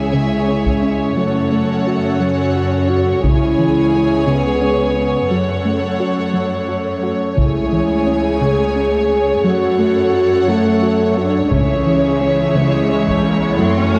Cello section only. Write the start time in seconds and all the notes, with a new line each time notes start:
Already playing: C#2
1.18 F#2
3.24 C#2
5.31 F#2
7.38 C#2
9.45 F#2
11.52 C#2
13.59 F#2